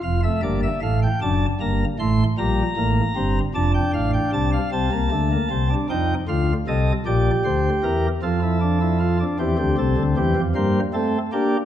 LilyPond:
<<
  \new Staff \with { instrumentName = "Pipe organ" } { \time 6/8 \key d \minor \tempo 4. = 51 << { f''16 e''16 d''16 e''16 f''16 g''16 a''8 bes''8 c'''8 | bes''4. a''16 g''16 f''16 g''16 a''16 f''16 | \key f \major a''4. g''8 f''8 ees''8 | d''8 c''8 bes'8 a'4. |
g'16 g'16 a'8 g'8 c''8 a'8 g'8 | } \\ { f'16 a16 bes8 a8 d'8 bes8 a8 | g8 bes8 c'8 d'4. | c'16 bes16 a16 bes16 c'16 d'16 ees'8 f'8 a'8 | g'4. f'16 e'16 d'16 e'16 f'16 d'16 |
c'4. bes8 c'8 d'8 | } >> }
  \new Staff \with { instrumentName = "Pipe organ" } { \clef bass \time 6/8 \key d \minor <f,, f,>8 <g,, g,>8 <a,, a,>8 <fis,, fis,>8 <g,, g,>8 <a,, a,>8 | <bes,, bes,>8 <a,, a,>8 <g,, g,>8 <f,, f,>8 <a,, a,>8 <c, c>8 | \key f \major <c, c>16 <c, c>16 <d, d>8 <c, c>8 <f, f>8 <d, d>8 <c, c>8 | <bes,, bes,>8 <d, d>8 <e, e>8 <f, f>4. |
<e, e>16 <d, d>16 <c, c>16 <d, d>16 <e, e>16 <f, f>16 <g, g>8 a8 bes8 | }
>>